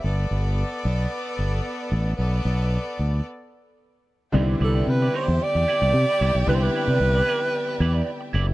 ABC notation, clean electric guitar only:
X:1
M:4/4
L:1/16
Q:1/4=112
K:Clyd
V:1 name="Clean electric guitar"
z16 | z16 | [EBd]2 [EBd] [EBd] z [EBd] [EBd]2 z2 [EBd] [EBd] z [EBd] [EBd]2 | [EBd]2 [EBd] [EBd] z [EBd] [EBd]2 z2 [EBd] [EBd] z2 [EBd]2 |]